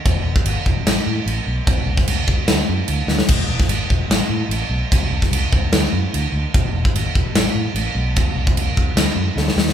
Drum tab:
CC |x---x---x---x---|x---x---x---x---|x---x---x---x---|x---x---x---x---|
SD |--------o-------|---o----o-----oo|---o----o-------|---o----o-------|
BD |o--o--o---------|o--o--o---------|o--o--o---------|o--o--o---------|

CC |x---x---x---x---|x---x---x-------|
SD |--------o-------|--------o---oooo|
BD |o--o--o---------|o--o--o---------|